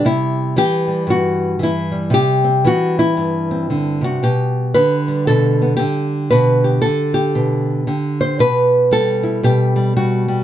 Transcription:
nylon-string guitar
Already playing: G3
0.05 C3 E4
0.56 E3 G4
0.88 G3
1.07 G2 F#4
1.59 E3
1.63 E4
1.92 G3
2.10 C3 G4
2.44 C4
2.65 E3 F#4
2.99 E4
3.17 G2
3.51 C4
3.70 D3
4.01 C3 F#4
4.23 B2 G4
4.74 D3 B4
5.08 G3
5.27 B2 A4
5.62 B3
5.77 D3 G4
6.30 B2 B4
6.64 G4
6.82 D3 A4
7.14 G4
7.35 B2
7.87 D3 G4
8.21 C5
8.39 B2 B4
8.91 G3 A4
9.23 E4
9.43 B2 G4
9.76 G3
9.96 G3 F#4
10.28 G3

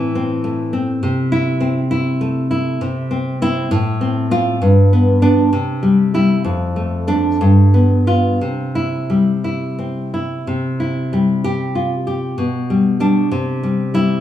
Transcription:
nylon-string guitar
Already playing: A2 E3
0.15 C4
0.44 A3
0.73 C4
1.03 C3
1.32 E4
1.61 C4
1.91 E4
2.21 A3
2.51 E4
2.81 C3
3.11 C4
3.42 C4 E4
3.71 A2
4.01 C4
4.31 C4 F4
4.62 G2
4.93 B3
5.22 B3 D4
5.53 C3
5.83 G3
6.14 G3 E4
6.45 F2
6.76 A3
7.07 A3 D4
7.41 G2
7.74 B3
8.07 B3 F4
8.41 C3
8.75 E4
9.10 G3
9.44 E4
9.79 C4
10.14 E4
10.47 C3
10.80 E4
11.13 G3
11.44 G4
11.75 F4
12.07 G4
12.38 B2
12.70 G3
13.00 G3 D4
13.32 C3
13.63 G3
13.94 G3 E4

